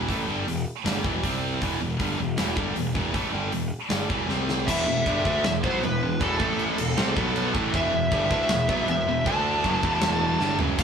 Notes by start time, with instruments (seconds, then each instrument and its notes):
0.08 picked electric bass A1, distorted electric guitar A2 E3 A3, kick, open hi-hat
0.27 picked electric bass G1, distorted electric guitar G2 D3 G3
0.46 picked electric bass E1, distorted electric guitar E2 B2, open hi-hat
0.84 picked electric bass G1, distorted electric guitar G2 D3 G3, snare, open hi-hat
1.04 picked electric bass E1, distorted electric guitar E2 B2 E3, kick
1.23 picked electric bass C2, distorted electric guitar C3 G3 C4, kick, open hi-hat
1.61 picked electric bass E1, distorted electric guitar E2 B2 E3, kick, open hi-hat
1.80 picked electric bass E1, distorted electric guitar E2 B2
1.99 picked electric bass G1, distorted electric guitar G2 D3 G3, kick, open hi-hat
2.18 picked electric bass E1, distorted electric guitar E2 B2
2.38 picked electric bass E1, distorted electric guitar E2 B2 E3, snare, open hi-hat
2.57 picked electric bass G1, distorted electric guitar G2 D3 G3, kick
2.75 picked electric bass E1, distorted electric guitar E2 B2, open hi-hat
2.95 picked electric bass E1, distorted electric guitar E2 B2 E3, kick
3.14 picked electric bass A1, distorted electric guitar A2 E3 A3, kick, open hi-hat
3.32 picked electric bass G1, distorted electric guitar G2 D3 G3
3.52 picked electric bass E1, distorted electric guitar E2 B2, open hi-hat
3.90 picked electric bass G1, distorted electric guitar G2 D3 G3, snare, open hi-hat
4.09 picked electric bass E1, distorted electric guitar E2 B2 E3, kick
4.29 picked electric bass C2, distorted electric guitar C3 G3 C4, snare
4.49 snare
4.67 picked electric bass E1, distorted electric guitar E2 B2 E3, analog synth pad E3 B3 E4, lead electric guitar E5, kick, crash, china
4.86 picked electric bass E1, distorted electric guitar E2 B2
5.06 picked electric bass G1, distorted electric guitar G2 D3 G3, kick, china
5.25 picked electric bass D2, distorted electric guitar D3 A3 D4, kick
5.44 picked electric bass E1, distorted electric guitar E2 B2, lead electric guitar E5, snare, china
5.64 picked electric bass B1, distorted electric guitar B2 F#3 B3, lead electric guitar C5, kick
5.82 picked electric bass E1, distorted electric guitar E2 B2, lead electric guitar B4, china
6.02 picked electric bass E1, distorted electric guitar E2 B2
6.21 picked electric bass E1, distorted electric guitar E2 B2 E3, lead electric guitar A4, kick, china
6.39 picked electric bass A1, distorted electric guitar A2 E3 A3, kick
6.59 china
6.78 picked electric bass E1, distorted electric guitar E2 B2, crash
6.97 picked electric bass C2, distorted electric guitar C3 G3 C4, snare, china
7.16 picked electric bass B1, distorted electric guitar B2 F#3 B3, kick
7.36 china
7.53 picked electric bass A1, distorted electric guitar A2 E3 A3, analog synth pad E4 B4 E5, kick
7.73 picked electric bass E1, distorted electric guitar E2 B2 E3, lead electric guitar E5, kick, china
7.92 picked electric bass E1, distorted electric guitar E2 B2
8.11 picked electric bass G1, distorted electric guitar G2 D3 G3, kick, china
8.31 picked electric bass D2, distorted electric guitar D3 A3 D4, lead electric guitar E5, kick
8.49 picked electric bass E1, distorted electric guitar E2 B2, snare, china
8.69 picked electric bass B1, distorted electric guitar B2 F#3 B3, kick
8.88 picked electric bass E1, distorted electric guitar E2 B2, lead electric guitar E5, china
9.07 picked electric bass E1, distorted electric guitar E2 B2
9.24 picked electric bass D2, distorted electric guitar D3 A3 D4, lead electric guitar A5, kick, china
9.63 picked electric bass F#1, distorted electric guitar F#2 C#3 F#3, analog synth pad E4 B4, kick, china
9.82 picked electric bass E1, distorted electric guitar E2 B2 E3, kick
10.02 snare, china
10.40 picked electric bass G1, distorted electric guitar G2 D3 G3, snare
10.58 picked electric bass F#1, distorted electric guitar F#2 C#3 F#3, floor tom
10.78 picked electric bass D2, distorted electric guitar D3 A3 D4, overdriven electric guitar F4, analog synth pad A4 F5, lead electric guitar F5, kick, crash